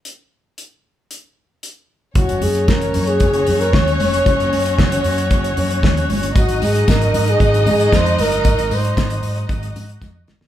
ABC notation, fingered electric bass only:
X:1
M:4/4
L:1/16
Q:1/4=114
K:Gblyd
V:1 name="Fingered electric bass" clef=bass
z16 | G,,, G,,, G,,2 G,,,2 G,,2 G,,,2 G,,2 E,,2 F,,,2 | G,,, G,,, G,,2 G,,,2 G,,2 G,,,2 G,,2 E,,2 =G,,,2 | A,,, A,,, A,,2 A,,,2 A,,2 A,,,2 A,,2 F,,2 =G,,,2 |
A,,, A,,, A,,2 A,,,2 A,,2 A,,,2 A,,2 F,,2 =G,,,2 |]